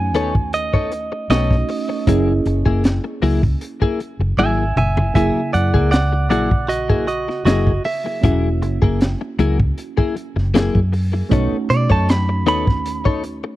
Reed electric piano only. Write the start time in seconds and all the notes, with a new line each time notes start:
Already playing: A3 C#4 D#4 F#4
1.30 A3 C#4 D#4 F#4
2.07 A#3 C#4 E4 G#4
5.14 C#3 A#3 E4 G#4
8.21 A#3 C#4 E4 F#4
11.29 A3 C#4 D#4 F#4